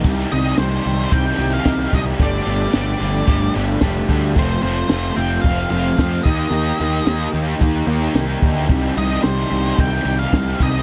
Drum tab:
CC |x-------|--------|--------|--------|
HH |-xxxxxxx|xxxxxxxx|xxxxxxxx|xxxxxxxx|
TB |--x---x-|--x---x-|--x---x-|--x---x-|
SD |--o---o-|--o---o-|--o---o-|--o---o-|
BD |o---o-oo|o---o-oo|o---o-oo|----o--o|

CC |--------|
HH |xxxxxxxx|
TB |--x---x-|
SD |--o---o-|
BD |o---o-oo|